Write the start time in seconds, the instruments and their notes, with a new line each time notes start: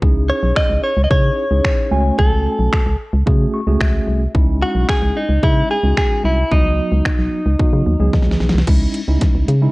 0.02 fm bass C#2, tine electric piano C#4 D#4 E4 G#4, kick
0.30 clean electric guitar C#5
0.43 fm bass B1
0.56 clean electric guitar D#5, finger snap, kick
0.70 fm bass C#2
0.84 clean electric guitar C#5
0.97 fm bass C#2
1.04 clean electric guitar D#5
1.10 fm bass C#3, tine electric piano C#4 D#4 E4 G#4, clean electric guitar C#5, kick
1.51 fm bass C#2, tine electric piano C#4 D#4 E4 G#4
1.65 finger snap, kick
1.91 fm bass C#2, tine electric piano A3 C#4 F#4 G#5
2.19 fm bass C#2, clean electric guitar A4, kick
2.59 fm bass B1
2.73 finger snap, kick
2.86 fm bass C#2
3.13 fm bass C#2
3.26 fm bass C#3, tine electric piano A3 C#4 F#4 G#4, kick
3.54 tine electric piano C#6
3.67 fm bass C#2, tine electric piano A3 C#4 F#4 G#4
3.81 fm bass C#2, tine electric piano E5, finger snap, kick
4.08 fm bass C2
4.35 fm bass C#2, tine electric piano G#3 C#4 D#4 E4, kick
4.63 clean electric guitar F#4
4.75 fm bass B1
4.89 clean electric guitar G#4, finger snap, kick
5.02 fm bass C#2
5.17 clean electric guitar D#4
5.29 fm bass C#2
5.43 fm bass C#3, tine electric piano G#3 C#4 D#4 E4, clean electric guitar E4, kick
5.71 clean electric guitar G#4
5.83 fm bass C#2, tine electric piano G#3 C#4 D#4 F#4
5.97 clean electric guitar G#4, finger snap, kick
6.24 fm bass C2, clean electric guitar E4
6.51 fm bass C#2, tine electric piano F#3 B3 D#4 F#4, clean electric guitar D#4, kick
6.92 fm bass C#2
7.05 finger snap, kick
7.19 fm bass B1
7.46 fm bass C#2
7.59 tine electric piano F#3 B3 D#4 F#4, kick
7.73 fm bass C#3
7.86 fm bass D#2
8.00 fm bass C#2, tine electric piano F#3 B3 D#4 G#4
8.13 kick, snare
8.22 snare
8.27 fm bass C#2
8.31 snare
8.40 fm bass B1, snare
8.49 snare
8.54 fm bass C2
8.58 snare
8.67 fm bass C#2, tine electric piano G#3 C#4 D#4 E4, kick, snare, closed hi-hat, crash
8.94 closed hi-hat
9.08 fm bass C#2, tine electric piano G#3 C#4 D#4 E4
9.21 kick, snare, closed hi-hat
9.35 fm bass C#2
9.48 fm bass C#3, closed hi-hat
9.62 tine electric piano G#3 C#4 D#4 E4